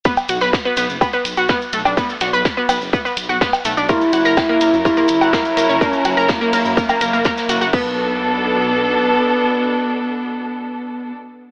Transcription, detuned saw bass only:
\new Staff \with { instrumentName = "Detuned saw bass" } { \clef bass \time 4/4 \key b \minor \tempo 4 = 125 r8 b,,16 b,,16 r8 b,,16 fis,,16 r8 b,,16 b,,16 r8 b,,16 b,,16 | r8 b,,16 b,,16 r8 b,,16 fis,,16 r8 b,,16 b,,16 r8 b,,16 b,,16 | r8 fis,,16 fis,,16 r8 fis,,16 fis,16 r8 fis,,16 fis,,16 r8 fis,,16 fis,,16 | r8 fis,,16 fis,,16 r8 fis,,16 fis,16 r8 fis,,16 fis,,16 r8 fis,,16 fis,,16 |
b,,2. r4 | r1 | }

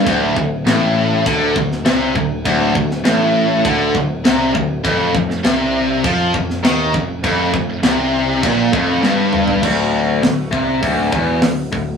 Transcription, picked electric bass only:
\new Staff \with { instrumentName = "Picked electric bass" } { \clef bass \time 4/4 \key d \phrygian \tempo 4 = 100 d,,8 d,,8 a,,4 d,8 d,,8 c,8 d,,8 | d,,8 d,,8 a,,4 d,8 d,,8 c,8 d,,8 | f,,8 f,,8 c,4 f,8 r8 ees,8 f,,8 | f,,8 f,,8 c,4 bes,,8 f,,8 g,,4 |
d,,4 d,,8 c,8 d,,8 e,,8 d,,8 d,,8 | }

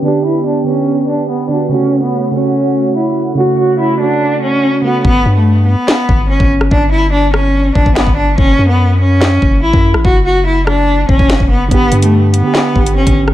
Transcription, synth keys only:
\new Staff \with { instrumentName = "Synth keys" } { \time 4/4 \key g \lydian \tempo 4 = 144 <d b g'>4~ <d b g'>16 r16 <d b g'>4.~ <d b g'>16 r16 <d b fis'>8 | <cis a fis'>4~ <cis a fis'>16 r16 <cis a fis'>4.~ <cis a fis'>16 r8. | <cis a fis'>4~ <cis a fis'>16 r16 <a fis'>4.~ <a fis'>16 r16 <cis a fis'>8 | r1 |
r1 | r1 | r1 | <d b g'>8. <d b g'>8. r16 <d b g'>8. <d b g'>4~ <d b g'>16 r16 | }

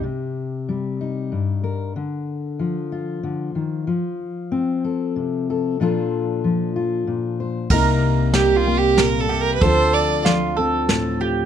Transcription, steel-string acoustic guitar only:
\new Staff \with { instrumentName = "Steel-string acoustic guitar" } { \clef bass \time 3/4 \key c \dorian \tempo 4 = 94 << { g'4. ees'4 bes'8 | r4. f'4. | r4. a'4 a'8 | <f d' f' a'>4. f'4 c''8 |
<g bes ees' bes'>4. bes4. | <f c' f' a'>4. c'4 f'8 | } \\ { c4 g4 g,4 | d4 f4 d8 ees8 | f4 c'4 c4 | bes,4 f4 bes,4 |
c4 g4 bes,8 c8 | d4 f4 a,4 | } >> }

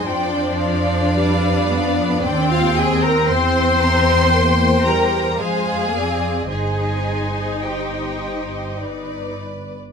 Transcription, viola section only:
\new Staff \with { instrumentName = "Viola section" } { \time 3/4 \key c \minor \tempo 4 = 55 f4 g8 b8 c'4~ | c'4 bes8 g8 aes8 c'8 | ees'2~ ees'8 r8 | }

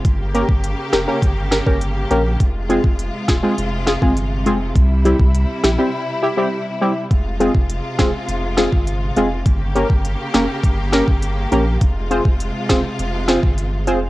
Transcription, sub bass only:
\new Staff \with { instrumentName = "Sub bass" } { \clef bass \time 4/4 \key f \minor \tempo 4 = 102 g,,8. g,,8 r16 f,,16 r16 g,,8. g,,8. bes,,8 | f,,8. f,,8 r16 e,,16 r16 f,,8. g,,8. f,,8 | c,8. c,8 r16 bes,,16 r2 r16 | f,,8. f,,8 r16 e,,16 r16 f,,8. g,,8. f,,8 |
g,,8. g,,8 r16 f,,16 r16 g,,8. g,,8. bes,,8 | f,,8. f,,8 r16 e,,16 r16 f,,8. g,,8. f,,8 | }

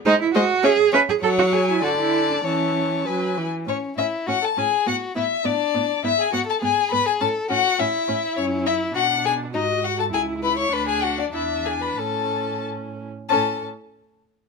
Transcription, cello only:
\new Staff \with { instrumentName = "Cello" } { \clef bass \time 2/4 \key a \major \tempo 4 = 101 dis'16 e'16 fis'8 gis'8 b'16 gis'16 | a'16 fis'16 gis'16 e'16 fis'16 e'8 d'16 | cis'4 r4 | a,8 a,8 a,8 a,8 |
a,8 a,8 a,8 a,8 | gis,8 gis,8 gis,8 gis,8 | a,8 a,8 a,8 a,8 | fis,4 b,4 |
gis,4 cis,4 | d,4 e,4 | a,4. r8 | a,8 r4. | }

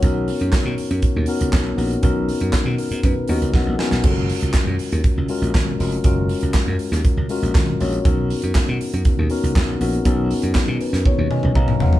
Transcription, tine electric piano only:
\new Staff \with { instrumentName = "Tine electric piano" } { \time 4/4 \key b \lydian \tempo 4 = 120 << { <gis' cis''>8 r2. r8 | r4. ais'8 b'8 dis''8 fis''8 gis''8 | r1 | r1 |
r1 | r4. b'8 cis''8 <dis'' gis''>8 <dis'' eis'' ais''>8 <cis'' eis'' fis''>8 | } \\ { <b cis' dis' fis' ais'>4. r4 <b cis' dis' fis' ais'>4 <b cis' dis' fis' ais'>8 | <b cis' dis' fis' ais'>4. r4 <b cis' dis' fis' ais'>4 <b cis' dis' fis' ais'>8 | <gis cis' eis' fis' a' ais'>4. r4 <gis cis' eis' fis' ais'>4 <gis cis' eis' fis' ais'>8 | <gis cis' eis' fis' ais'>4. r4 <gis cis' eis' fis' ais'>4 <gis cis' eis' fis' cis''>8 |
<b cis' dis' fis' ais'>4. r4 <b cis' dis' fis' ais'>4 <b cis' dis' fis' ais'>8 | <b cis' dis' fis' gis'>4. r2 r8 | } >> }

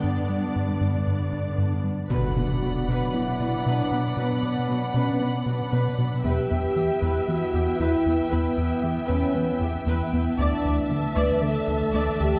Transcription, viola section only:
\new Staff \with { instrumentName = "Viola section" } { \time 4/4 \key b \minor \tempo 4 = 116 << { d'2.~ d'8 r8 | d''1~ | d''1 | e''1~ |
e''1 | e''1 | } \\ { b2.~ b8 r8 | b'8 b'8 fis'8 b'8 b'8 fis'8 b'8 b'8 | b'8 b'8 fis'8 b'8 b'8 fis'8 b'8 b'8 | b'8 b'8 g'8 b'8 b'8 g'8 b'8 b'8 |
b'8 b'8 g'8 b'8 b'8 g'8 b'8 b'8 | d''8 d''8 a'8 d''8 d''8 a'8 d''8 d''8 | } >> }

